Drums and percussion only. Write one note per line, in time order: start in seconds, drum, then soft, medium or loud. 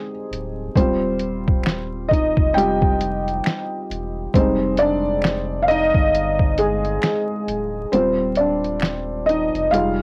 0.33 closed hi-hat medium
0.76 kick loud
0.76 closed hi-hat medium
1.20 closed hi-hat medium
1.48 kick loud
1.64 finger snap medium
1.66 finger snap medium
1.66 snare loud
1.66 closed hi-hat medium
2.11 kick medium
2.11 closed hi-hat medium
2.37 kick loud
2.58 closed hi-hat medium
2.82 kick loud
3.01 closed hi-hat medium
3.28 closed hi-hat soft
3.44 finger snap medium
3.46 finger snap medium
3.46 snare loud
3.46 closed hi-hat medium
3.91 closed hi-hat medium
4.34 kick loud
4.34 closed hi-hat medium
4.77 closed hi-hat medium
5.22 finger snap medium
5.24 finger snap medium
5.24 snare loud
5.24 closed hi-hat medium
5.71 closed hi-hat soft
5.95 kick loud
6.15 closed hi-hat medium
6.40 kick loud
6.58 closed hi-hat medium
6.85 closed hi-hat soft
7.02 finger snap medium
7.02 snare loud
7.02 closed hi-hat medium
7.48 closed hi-hat medium
7.93 closed hi-hat medium
8.35 closed hi-hat medium
8.64 closed hi-hat soft
8.80 finger snap medium
8.82 finger snap medium
8.82 snare loud
8.82 closed hi-hat medium
9.29 closed hi-hat medium
9.55 closed hi-hat soft
9.74 closed hi-hat medium